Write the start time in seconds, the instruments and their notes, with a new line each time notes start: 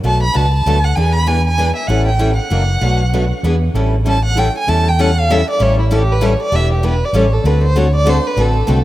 0.04 fretless electric bass B1, steel-string acoustic guitar B2 F#3 A3 D4 F#4 B4, violin A5
0.23 violin B5
0.34 fretless electric bass C#2, steel-string acoustic guitar B2 F#3 A3 D4 F#4 B4, violin A5
0.54 violin A5
0.66 fretless electric bass D2, steel-string acoustic guitar B2 F#3 A3 D4 F#4 B4
0.84 violin F#5
0.95 fretless electric bass E2, steel-string acoustic guitar E3 B3 D4 G#4 B4, violin G#5
1.12 violin B5
1.27 steel-string acoustic guitar E3 B3 D4 G#4 B4, violin G#5
1.47 violin G#5
1.58 steel-string acoustic guitar E3 B3 D4 G#4 B4
1.75 violin E5
1.87 fretless electric bass A1, steel-string acoustic guitar E3 G3 C#4 E4 A4, violin F#5
2.06 violin G5
2.19 steel-string acoustic guitar E3 G3 C#4 E4 A4
2.37 violin F#5
2.50 fretless electric bass F#1, steel-string acoustic guitar E3 F#3 A#3 D4 E4 F#4 A#4
2.81 fretless electric bass B1, steel-string acoustic guitar B2 F#3 A3 D4 F#4 B4
3.13 steel-string acoustic guitar B2 F#3 A3 D4 F#4 B4
3.43 fretless electric bass E2, steel-string acoustic guitar E3 B3 D4 G#4 B4
3.74 fretless electric bass A1, steel-string acoustic guitar E3 G3 C#4 E4 A4
4.04 steel-string acoustic guitar E3 G3 C#4 E4 A4
4.09 violin A5
4.25 violin F#5
4.35 steel-string acoustic guitar E3 G3 C#4 E4 A4, violin G5
4.58 violin G#5
4.67 fretless electric bass E2, steel-string acoustic guitar E3 G3 C#4 E4 A4, violin A5
4.88 violin G5
4.99 steel-string acoustic guitar E3 G3 C#4 E4 A4, violin F#5
5.19 violin F5
5.29 steel-string acoustic guitar E3 G3 C#4 E4 A4, violin E5
5.50 violin D5
5.60 fretless electric bass A1, steel-string acoustic guitar E3 G3 C#4 E4 A4, violin C#5
5.80 violin E4
5.91 steel-string acoustic guitar E3 G3 C#4 E4 A4, violin G4
6.12 violin B4
6.22 steel-string acoustic guitar E3 G3 C#4 E4 A4, violin C#5
6.42 violin D5
6.52 fretless electric bass E1, steel-string acoustic guitar E3 G3 B3 D4 E4 G4 B4, violin E5
6.73 violin G4
6.83 steel-string acoustic guitar E3 G3 B3 D4 E4 G4 B4, violin B4
7.05 violin D5
7.13 fretless electric bass A1, steel-string acoustic guitar E3 G3 C#4 E4 A4, violin C#5
7.33 violin A4
7.44 fretless electric bass D2, steel-string acoustic guitar D3 A3 C4 F#4 A4, violin B4
7.63 violin C5
7.75 steel-string acoustic guitar D3 A3 C4 F#4 A4, violin C#5
7.95 violin D5
8.04 steel-string acoustic guitar D3 A3 C4 F#4 A4
8.09 violin C5
8.27 violin B4
8.36 fretless electric bass A1, steel-string acoustic guitar D3 A3 C4 F#4 A4
8.40 violin A4
8.66 fretless electric bass C2, steel-string acoustic guitar D3 A3 C4 F#4 A4